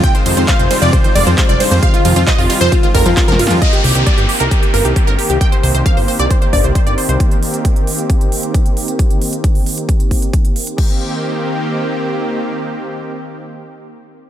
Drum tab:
CC |------------------------------------------------|------------------------------------------------|------------------------------------------------|------------------------------------------------|
RD |------x-----------x-----------x-----------x-----|------x-----------x-----------x-----------x-----|------------------------------------------------|------------------------------------------------|
HH |x--x--o--x--x--x--o--x--x--x--o--x--x--x--o--x--|x--x--o--x--x--o--o--x--x--x--o--x--x--x--o--x--|x--x--o--x--x--x--o--x--x--x--o--x--x--x--o--x--|x--x--o--x--x--o--o--x--x--x--o--x--x--x--o--x--|
CP |------------x-----------------------x-----------|------------x-----------------------x-----------|------------------------------------------------|------------------------------------------------|
SD |------------------------------------------------|------------------------------------o---o---o---|------------------------------------------------|------------------------------------------------|
BD |o-----------o-----------o-----------o-----------|o-----------o-----------o-----o-----o-----------|o-----------o-----------o-----------o-----------|o-----------o-----------o-----o-----o-----------|

CC |------------------------------------------------|------------------------------------------------|x-----------------------------------------------|------------------------------------------------|
RD |------------------------------------------------|------------------------------------------------|------------------------------------------------|------------------------------------------------|
HH |x--x--o--x--x--x--o--x--x--x--o--x--x--x--o--x--|x--x--o--x--x--o--o--x--x--x--o--x--x--x--o--x--|------------------------------------------------|------------------------------------------------|
CP |------------------------------------------------|------------------------------------------------|------------------------------------------------|------------------------------------------------|
SD |------------------------------------------------|------------------------------------------------|------------------------------------------------|------------------------------------------------|
BD |o-----------o-----------o-----------o-----------|o-----------o-----------o-----o-----o-----------|o-----------------------------------------------|------------------------------------------------|